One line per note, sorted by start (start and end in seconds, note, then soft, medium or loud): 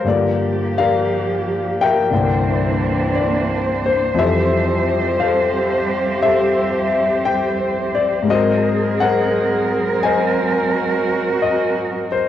0.03 2.10 G2 soft
0.03 2.10 D3 soft
0.03 2.08 F3 medium
0.03 2.09 A#3 soft
0.03 2.11 A#3 soft
0.03 2.09 G4 medium
0.08 2.13 F4 soft
0.08 0.78 A#4 soft
0.08 0.78 D5 medium
0.78 1.82 A#4 medium
0.78 2.10 D5 medium
0.78 1.75 F5 medium
1.81 2.14 A#4 medium
1.81 3.81 E5 medium
1.81 3.11 G5 medium
2.10 4.16 C2 soft
2.10 4.16 G2 soft
2.10 4.17 D3 soft
2.10 4.15 E3 medium
2.10 4.15 A#3 medium
2.10 4.17 A#3 soft
2.10 4.14 C4 medium
2.10 4.14 D4 medium
2.10 8.23 C5 medium
2.14 4.18 E4 soft
2.14 4.19 A#4 soft
3.15 3.80 D5 medium
3.86 4.16 C5 medium
4.14 8.26 F2 medium
4.14 8.27 E3 soft
4.14 8.27 F3 soft
4.14 8.23 G3 medium
4.14 8.23 C4 medium
4.14 8.23 G4 medium
4.14 6.23 G4 soft
4.19 5.20 A4 medium
4.19 5.16 E5 medium
5.20 6.23 A4 medium
5.20 7.21 C5 medium
5.20 6.25 F5 medium
6.23 8.25 G4 medium
6.23 8.25 A4 medium
6.23 7.21 E5 medium
7.25 7.90 G5 medium
7.95 8.29 D5 medium
8.22 12.29 G#2 soft
8.22 12.29 F#3 medium
8.22 12.29 G#3 soft
8.22 12.29 C4 medium
8.22 10.31 G#4 medium
8.26 12.29 C4 soft
8.26 12.29 A#4 medium
8.26 8.94 D#5 medium
8.30 12.29 F#4 soft
8.30 9.00 A#4 medium
8.30 9.00 C5 medium
9.00 11.02 A#4 medium
9.00 10.03 C5 medium
9.00 10.05 F#5 medium
10.03 12.07 C5 medium
10.03 11.41 D#5 medium
10.03 11.36 G#5 medium
10.36 12.29 F#4 medium
11.42 12.13 D#5 medium
12.12 12.29 C5 medium